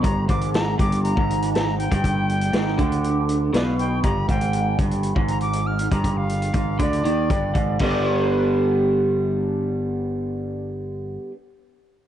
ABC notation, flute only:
X:1
M:4/4
L:1/16
Q:1/4=119
K:none
V:1 name="Flute"
_b2 d'2 b2 d'2 b4 b2 g2- | g8- g2 z2 d f g2 | _b2 g4 z4 b d'2 f'2 b- | _b f4- f d8 z2 |
z16 | z16 |]